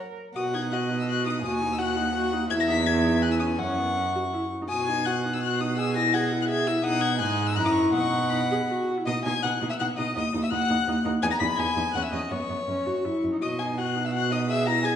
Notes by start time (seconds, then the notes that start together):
Already playing: A#4
0.35 B2 F#4 F#5 D#6
0.54 D#4 G#6
0.72 F#4 D#5 F#6
0.89 D#4
1.00 E6
1.09 F#4 F#6
1.26 D#4 D#6
1.42 D#2 F#4 G#5 D#6
1.62 D#4
1.72 E6
1.79 F#4 F#5 F#6
1.96 D#4
2.14 F#4
2.33 D#4
2.50 E2 E4 E5 G#6
2.60 A#6
2.68 D#4 B6
2.85 E4 E5 G#6
3.04 D#4
3.22 E4 G#5 F#6
3.32 E6
3.40 C#4 D#6
3.58 F#2 C#4 F#5 C#6
3.78 B3
3.96 C#4
4.14 F#4
4.33 E4
4.62 D#4
4.69 B2 F#4 G#5 D#6
4.87 D#4 G#6
5.06 F#4 F#5 F#6
5.25 D#4
5.34 E6
5.42 F#4 F#6
5.60 D#4 D#6
5.78 G#4 G#5 E6
5.96 E4 A#6
6.14 G#4 F#5 G#6
6.32 E4
6.42 F#6
6.48 G#4 E5 G#6
6.67 E4 E6
6.84 B2 D#4 F#5 D#6
7.01 G#6
7.19 G#2 D#4 G#5 F#6
7.47 E6
7.55 F#2 E4 A#5 F#6
7.65 D#6
7.73 C#6
7.92 B2 D#4 F#5 C#6
8.30 D#4 B5
8.51 G#4
8.70 F#4
8.98 E4
9.06 B2 D#4 D#5 D#6
9.24 B2 D#4 G#5 G#6
9.43 B2 D#4 F#5 F#6
9.61 B2 D#4
9.70 E5 E6
9.79 B2 D#4 F#5 F#6
9.97 B2 D#4 D#5 D#6
10.16 D#2 D#4 D#5 D#6
10.33 D#2 D#4
10.43 E5 E6
10.51 D#2 D#4 F#5 F#6
10.70 D#2 D#4
10.87 D#2 D#4
11.05 D#2 D#4
11.22 E2 D#4 G#5 G#6
11.31 A#5 A#6
11.40 E2 D#4 B5 B6
11.57 E2 D#4 G#5 G#6
11.76 E2 D#4
11.93 E2 C#4 F#5 F#6
12.03 E5 E6
12.12 E2 C#4 D#5 D#6
12.30 F#2 B3 C#5 C#6
12.49 F#2 B3
12.67 F#2 C#4
12.86 F#2 F#4
13.05 F#2 E4
13.24 F#2
13.33 D#4
13.42 B2 F#4 D#5 D#6
13.59 D#4 G#5 G#6
13.78 F#4 F#5 F#6
13.96 D#4
14.05 E5 E6
14.14 F#4 F#5 F#6
14.31 D#4 D#5 D#6
14.49 G#4 E5 E6
14.67 E4 A#5 A#6
14.83 G#4 G#5 G#6